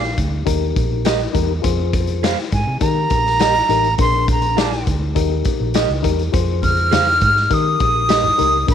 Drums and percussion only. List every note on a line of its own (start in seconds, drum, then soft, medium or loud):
0.03 snare soft
0.18 kick medium
0.18 closed hi-hat medium
0.47 kick medium
0.47 closed hi-hat medium
0.76 kick medium
0.76 closed hi-hat medium
1.05 snare loud
1.05 closed hi-hat medium
1.35 kick medium
1.35 closed hi-hat medium
1.64 kick loud
1.64 closed hi-hat medium
1.93 kick medium
1.93 closed hi-hat medium
2.07 closed hi-hat soft
2.24 snare loud
2.24 closed hi-hat medium
2.38 snare soft
2.52 kick medium
2.52 closed hi-hat medium
2.81 kick medium
2.81 closed hi-hat medium
3.10 kick medium
3.10 closed hi-hat medium
3.26 snare soft
3.39 snare loud
3.39 closed hi-hat medium
3.69 closed hi-hat medium
3.84 closed hi-hat soft
3.98 kick loud
3.98 closed hi-hat medium
4.28 kick medium
4.28 closed hi-hat medium
4.42 closed hi-hat soft
4.58 snare loud
4.58 closed hi-hat medium
4.72 snare soft
4.87 kick medium
4.87 closed hi-hat medium
5.16 kick medium
5.16 closed hi-hat medium
5.45 kick medium
5.45 closed hi-hat medium
5.74 snare loud
5.74 closed hi-hat medium
6.04 kick medium
6.04 closed hi-hat medium
6.19 closed hi-hat soft
6.33 kick loud
6.33 closed hi-hat medium
6.33 muted conga soft
6.63 kick medium
6.63 closed hi-hat medium
6.63 high conga medium
6.77 closed hi-hat soft
6.92 snare loud
6.92 closed hi-hat medium
6.92 muted conga soft
6.92 high conga medium
7.07 snare soft
7.21 kick medium
7.21 closed hi-hat medium
7.21 muted conga soft
7.21 low conga medium
7.37 snare soft
7.51 kick medium
7.51 closed hi-hat medium
7.80 kick medium
7.80 closed hi-hat medium
8.09 snare loud
8.09 closed hi-hat medium
8.24 low conga medium
8.39 closed hi-hat medium
8.39 high conga medium
8.68 kick loud
8.68 closed hi-hat medium